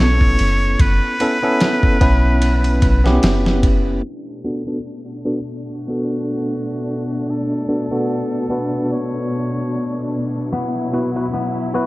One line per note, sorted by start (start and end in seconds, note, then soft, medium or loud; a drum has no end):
0.00 0.36 B1 loud
0.00 1.15 B3 medium
0.00 1.16 C#4 medium
0.00 1.16 E4 medium
0.00 1.17 A4 medium
0.00 0.82 C#5 loud
0.21 kick medium
0.39 0.76 F#1 medium
0.39 ride medium
0.79 1.00 F#1 medium
0.79 3.23 B4 medium
0.79 kick loud
0.79 ride medium
1.20 1.37 B3 medium
1.20 1.37 C#4 medium
1.20 1.38 E4 medium
1.20 1.38 A4 medium
1.20 ride medium
1.43 1.97 B3 medium
1.43 1.97 C#4 medium
1.43 1.97 E4 medium
1.43 1.97 A4 loud
1.60 snare loud
1.60 ride medium
1.83 kick medium
2.01 2.82 B1 medium
2.01 3.00 B3 medium
2.01 3.00 C#4 medium
2.01 3.01 E4 medium
2.01 3.01 B4 medium
2.01 kick medium
2.01 ride medium
2.42 ride medium
2.64 ride soft
2.82 3.19 B1 medium
2.82 kick medium
2.82 ride medium
3.04 4.01 B3 medium
3.04 4.02 C#4 medium
3.04 4.02 E4 medium
3.04 4.02 G4 medium
3.04 snare soft
3.23 4.01 F#1 medium
3.23 snare loud
3.23 ride medium
3.46 snare soft
3.63 kick medium
3.63 ride medium
4.04 11.86 B2 medium
4.04 10.49 A3 medium
4.04 10.49 D4 medium
4.44 4.61 B3 medium
4.44 4.62 D4 medium
4.44 4.62 F#4 medium
4.44 4.62 A4 medium
4.67 4.77 B3 medium
4.67 4.77 D4 medium
4.67 4.77 F#4 medium
4.67 4.77 A4 medium
5.25 5.38 B3 medium
5.25 5.38 D4 medium
5.25 5.38 F#4 medium
5.25 5.38 A4 medium
5.67 7.32 F#4 medium
5.88 7.64 B3 medium
5.88 7.64 D4 medium
5.88 7.65 F#4 medium
5.88 7.65 A4 medium
7.30 8.91 A4 medium
7.69 7.86 B3 medium
7.69 7.86 D4 medium
7.69 7.86 F#4 medium
7.69 7.86 A4 medium
7.91 8.45 B3 medium
7.91 8.46 D4 medium
7.91 8.46 F#4 medium
7.91 8.46 A4 medium
8.50 10.50 B3 medium
8.50 10.50 D4 medium
8.50 10.51 F#4 medium
8.50 10.51 B4 medium
8.92 10.09 C#5 medium
10.52 11.86 F#3 medium
10.52 11.33 B3 medium
10.52 11.86 E4 medium
10.93 11.10 B3 medium
10.93 11.10 E4 medium
10.93 11.11 F#4 medium
10.93 11.11 B4 medium
11.16 11.25 B3 medium
11.16 11.26 E4 medium
11.16 11.26 F#4 medium
11.16 11.26 B4 medium
11.33 11.86 B3 medium
11.74 11.86 B3 medium
11.74 11.86 E4 medium
11.74 11.86 F#4 medium
11.74 11.86 B4 loud